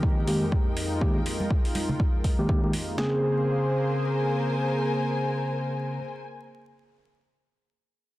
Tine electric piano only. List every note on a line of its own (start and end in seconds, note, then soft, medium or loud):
0.00 0.25 D#3 medium
0.00 0.25 G#3 medium
0.00 0.25 A#3 medium
0.00 0.25 G4 loud
0.27 0.44 D#3 medium
0.27 0.44 G#3 medium
0.27 0.44 A#3 medium
0.27 0.44 G4 medium
1.01 1.18 D#3 medium
1.01 1.18 G#3 medium
1.01 1.18 A#3 medium
1.01 1.18 G4 loud
2.39 2.46 D#3 medium
2.39 2.46 G#3 medium
2.39 2.46 A#3 medium
2.39 2.46 G4 medium
2.49 2.60 D#3 medium
2.49 2.60 G#3 medium
2.49 2.60 A#3 medium
2.49 2.60 G4 medium
2.63 2.71 D#3 medium
2.63 2.71 G#3 medium
2.63 2.71 A#3 medium
2.63 2.71 G4 medium
2.97 5.98 C#3 medium
2.97 5.98 A#3 medium
2.97 5.99 C4 medium
2.97 5.99 G#4 medium